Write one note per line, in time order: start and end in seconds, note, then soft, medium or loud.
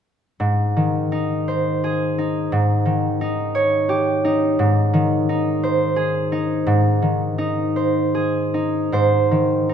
0.40 2.51 G#2 soft
0.77 2.54 D#3 soft
1.12 2.17 D#4 soft
1.48 2.54 C5 soft
1.84 2.55 G#4 soft
2.18 3.20 D#4 soft
2.52 4.58 G#2 medium
2.86 4.60 D#3 soft
3.21 4.23 D#4 soft
3.55 4.61 C#5 medium
3.89 4.60 G4 medium
4.25 5.28 D#4 soft
4.59 6.65 G#2 medium
4.93 7.01 D#3 soft
5.29 6.31 D#4 soft
5.63 7.75 C5 medium
5.96 8.13 G#4 medium
6.32 7.37 D#4 soft
6.67 8.91 G#2 medium
7.02 8.96 D#3 soft
7.38 8.53 D#4 soft
7.76 8.92 C5 medium
8.15 9.74 G#4 soft
8.54 9.68 D#4 soft
8.92 9.74 G#2 soft
8.92 9.74 C5 medium
9.31 9.74 D#3 soft
9.69 9.74 D#4 soft